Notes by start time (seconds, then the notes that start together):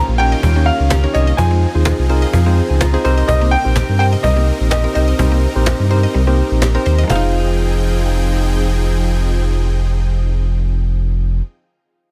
Already playing: D#3 A#3 C#4 D#4 F4 G4 A#4 C5
0.08 A#1
0.18 C#4 D#4 G4 A#4 C#5 G5, cajon slap
0.32 D#5, cajon slap
0.43 D#2 G3, cajon bass
0.56 A#3 C#4 D#4 G4 A#4 C#5
0.66 F5
0.80 C#2
0.91 G4, cajon bass, cajon slap, clap
1.04 C#4 D#4 G4 A#4 C#5
1.13 C2 C#5 D#5, cajon slap
1.27 D#5
1.37 F2 F3 C4 D#4 F4 G#4 C5 G#5, cajon bass
1.51 G#3
1.62 cajon slap
1.75 D#2 C4 D#4 F4 G#4 C5
1.85 F4, cajon bass, cajon slap, clap
1.98 C2, cajon slap
2.09 C4 D#4 F4 G#4 A#4 C5 D#5
2.22 D#5 F5
2.33 F2 F3 F5, cajon bass
2.46 G#3 C4 D#4 F4 G#4 C5
2.57 cajon slap
2.70 C#2 G#5
2.81 F4 A#5, cajon bass, cajon slap, clap
2.93 C4 D#4 F4 G#4 C5
3.04 C2 C3 C4 D#4 G4 A#4 C5, cajon slap
3.18 D#5
3.28 C2 G3 D#5, cajon bass
3.41 A#3
3.51 G5
3.64 A#1 C4 D#4 G4 A#4 C5, cajon slap
3.76 G4, cajon bass, cajon slap, clap
3.89 G2, cajon slap
3.99 C4 D#4 G4 A#4 C5 G5
4.13 D#5
4.23 C2 G3 D#5, cajon bass
4.36 A#3 C4 D#4 G4 A#4 D#5
4.60 A#1
4.70 G4 D#5, cajon bass, cajon slap, clap
4.84 C4 D#4 G4 A#4 C5
4.94 C2 C5 D#5, cajon slap
5.08 D#5
5.19 C2 G3 C4 D#4 G4 A#4 C5, cajon bass
5.32 A#3
5.55 A#1 C4 D#4 G4 A#4 C5
5.67 G4, cajon bass, cajon slap, clap
5.80 G2, cajon slap
5.90 C4 D#4 G4 A#4 C5
6.03 D#5, cajon slap
6.14 C2 G3
6.27 A#3 C4 D#4 G4 A#4 C5
6.51 A#1
6.62 G4, cajon slap, clap
6.75 C4 D#4 G4 A#4 C5, cajon slap
6.86 D#2 C5, cajon slap
6.98 D#5
7.04 F3
7.08 F1 F3 G#3 C4 D#4 F4 G#4 F5 G5, cajon bass, cajon slap, clap
7.12 D#4 C5